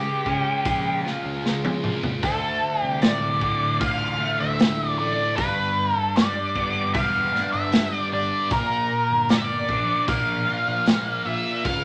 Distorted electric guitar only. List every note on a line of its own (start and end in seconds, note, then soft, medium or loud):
0.00 1.05 C#3 medium
0.00 1.43 G#3 medium
0.00 1.04 F4 medium
0.26 2.23 C#4 medium
0.65 2.23 G#4 medium
1.05 1.82 F4 medium
1.44 2.23 G#3 medium
1.83 2.23 F4 medium
2.23 4.20 D2 medium
3.03 4.58 A2 medium
3.42 5.38 D3 medium
3.80 5.38 F4 medium
4.20 4.98 A3 medium
4.59 5.38 A2 medium
4.99 5.38 A3 medium
5.38 7.34 G2 medium
6.17 7.72 G3 medium
6.55 8.51 B3 medium
6.94 8.51 G4 medium
7.34 8.11 D4 medium
7.73 8.52 G3 medium
8.12 8.52 D4 medium
8.52 10.48 A#2 medium
9.30 10.85 A#3 medium
9.69 11.65 D4 medium
10.08 11.65 A#4 medium
10.47 11.25 F4 medium
10.86 11.65 A#3 medium
11.25 11.84 F4 medium
11.64 11.84 C#3 medium